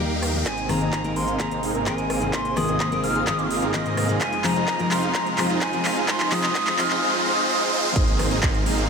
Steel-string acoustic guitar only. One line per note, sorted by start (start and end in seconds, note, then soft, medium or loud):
0.00 0.31 D#3 medium
0.00 0.31 G3 medium
0.00 0.31 A#3 medium
0.00 0.32 A#4 loud
0.34 0.44 D#3 medium
0.34 0.44 G3 medium
0.34 0.45 A#3 medium
0.34 0.45 G4 medium
0.69 1.01 D#3 medium
0.69 1.02 A#3 medium
0.69 1.02 C4 medium
0.69 1.02 G#4 loud
1.04 1.23 D#3 medium
1.04 1.23 A#3 medium
1.04 1.23 C4 medium
1.04 1.24 A#4 medium
1.39 1.58 D#3 medium
1.39 1.58 A#3 medium
1.39 1.59 C4 medium
1.39 1.59 G#4 medium
1.86 2.19 D#3 medium
1.86 2.19 A#3 medium
1.86 2.19 C4 medium
1.86 2.19 A#4 loud
2.21 2.33 D#3 medium
2.21 2.33 A#3 medium
2.21 2.34 C4 medium
2.21 2.34 G#4 medium
2.56 2.89 D#3 loud
2.56 2.89 A#3 medium
2.56 2.89 C4 medium
2.56 2.89 G#4 loud
2.91 3.10 D#3 medium
2.91 3.11 A#3 medium
2.91 3.11 C4 medium
2.91 3.11 A#4 medium
3.26 3.46 D#3 medium
3.26 3.46 A#3 medium
3.26 3.46 C4 medium
3.26 3.46 G#4 medium
3.73 4.06 D#3 medium
3.73 4.06 A#3 medium
3.73 4.06 C4 loud
3.73 4.07 A#4 medium
4.09 4.19 D#3 medium
4.09 4.19 A#3 medium
4.09 4.20 C4 medium
4.09 4.20 G#4 medium
4.44 4.76 F3 medium
4.44 4.77 C4 medium
4.44 4.77 D#4 medium
4.44 4.77 G#4 loud
4.79 4.98 F3 medium
4.79 4.98 C4 medium
4.79 4.98 D#4 medium
4.79 4.99 A#4 medium
5.37 5.70 F3 medium
5.37 5.70 C4 medium
5.37 5.70 D#4 medium
5.37 5.71 G#4 medium
5.73 5.92 F3 medium
5.73 5.92 C4 medium
5.73 5.92 D#4 medium
5.73 5.92 A#4 medium
6.31 6.53 F3 loud
6.31 6.53 C4 medium
6.31 6.54 D#4 medium
6.31 6.54 G#4 medium
6.78 7.00 F3 loud
6.78 7.00 C4 medium
6.78 7.00 D#4 medium
6.78 7.01 G#4 medium